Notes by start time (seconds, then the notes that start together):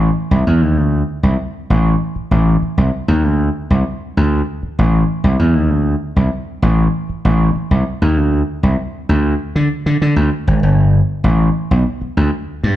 0.31 C2
0.47 E2
0.61 D#2
0.78 D2
1.23 C2
1.70 A1
2.16 muted slap bass stroke
2.31 A1
2.62 muted slap bass stroke
2.78 C2
3.08 D#2
3.24 D2
3.70 C2
4.17 D2
4.63 muted slap bass stroke
4.79 A1
5.24 C2
5.39 E2
5.55 D#2
5.70 D2
6.16 C2
6.62 A1
7.09 muted slap bass stroke
7.25 A1
7.55 muted slap bass stroke
7.71 C2
8.02 D#2
8.17 D2
8.63 C2
9.09 D2
9.56 D3
9.86 D3
10.02 D3
10.16 D2
10.47 G#1
10.63 G1
11.24 A1
11.71 B1
12.01 muted slap bass stroke
12.17 D2
12.64 G2